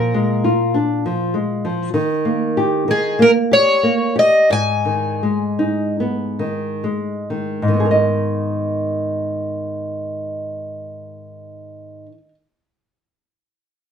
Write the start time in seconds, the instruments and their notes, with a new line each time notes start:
Already playing: nylon-string guitar A#2 F3, twelve-string acoustic guitar A#4
0.14 nylon-string guitar G#3
0.44 nylon-string guitar F4
0.74 nylon-string guitar D4
1.06 nylon-string guitar F3
1.34 nylon-string guitar G#3
1.65 nylon-string guitar F3
1.94 nylon-string guitar D#3
2.25 nylon-string guitar A#3
2.57 nylon-string guitar G4
2.88 nylon-string guitar D#3, twelve-string acoustic guitar G#4
3.19 nylon-string guitar A#3, twelve-string acoustic guitar A#4
3.51 nylon-string guitar G4, twelve-string acoustic guitar C#5
3.83 nylon-string guitar A#3
4.16 nylon-string guitar G4, twelve-string acoustic guitar D#5
4.50 nylon-string guitar G#2, twelve-string acoustic guitar G#5
4.85 nylon-string guitar D#3
5.23 nylon-string guitar G#3
5.59 nylon-string guitar D#4
6.00 nylon-string guitar B3
6.39 nylon-string guitar D#3
6.84 nylon-string guitar G#3
7.30 nylon-string guitar D#3
7.62 nylon-string guitar G#2
7.68 nylon-string guitar D#3
7.74 nylon-string guitar B3
7.80 nylon-string guitar G#4
7.85 nylon-string guitar A#4
7.91 nylon-string guitar D#5